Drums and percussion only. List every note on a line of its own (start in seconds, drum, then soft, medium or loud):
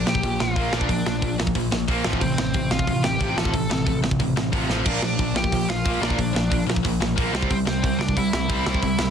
0.07 snare loud
0.15 kick medium
0.23 kick medium
0.23 open hi-hat medium
0.40 snare loud
0.56 kick loud
0.56 open hi-hat medium
0.73 snare loud
0.81 kick medium
0.89 kick medium
0.89 open hi-hat medium
1.06 snare loud
1.22 kick loud
1.22 open hi-hat medium
1.40 snare loud
1.47 kick medium
1.55 kick medium
1.55 open hi-hat medium
1.72 snare loud
1.88 kick loud
1.88 open hi-hat medium
2.04 snare loud
2.13 kick medium
2.21 kick loud
2.21 open hi-hat medium
2.38 snare loud
2.54 kick loud
2.54 open hi-hat medium
2.71 snare loud
2.79 kick medium
2.87 kick medium
2.87 open hi-hat medium
3.04 snare loud
3.21 kick loud
3.21 open hi-hat medium
3.38 snare loud
3.45 kick medium
3.54 kick loud
3.54 open hi-hat medium
3.71 snare loud
3.87 kick loud
3.87 open hi-hat medium
4.04 snare medium
4.11 kick medium
4.20 kick medium
4.20 open hi-hat medium
4.37 snare loud
4.53 kick loud
4.53 open hi-hat medium
4.70 snare medium
4.86 kick loud
4.86 crash loud
5.02 snare loud
5.19 kick medium
5.19 open hi-hat medium
5.36 snare loud
5.44 kick medium
5.52 kick medium
5.52 open hi-hat medium
5.70 snare loud
5.86 kick loud
5.86 open hi-hat medium
6.03 snare loud
6.10 kick medium
6.19 kick medium
6.19 open hi-hat medium
6.36 snare loud
6.52 kick loud
6.52 open hi-hat medium
6.70 snare loud
6.76 kick medium
6.85 kick loud
6.85 open hi-hat medium
7.02 snare loud
7.18 kick loud
7.18 open hi-hat medium
7.35 snare loud
7.42 kick medium
7.50 kick loud
7.50 open hi-hat medium
7.67 snare loud
7.84 kick loud
7.84 open hi-hat medium
8.01 snare loud
8.09 kick medium
8.17 kick medium
8.17 open hi-hat medium
8.33 snare loud
8.50 kick loud
8.50 open hi-hat medium
8.66 snare loud
8.74 kick medium
8.82 kick loud
8.82 open hi-hat medium
8.99 snare loud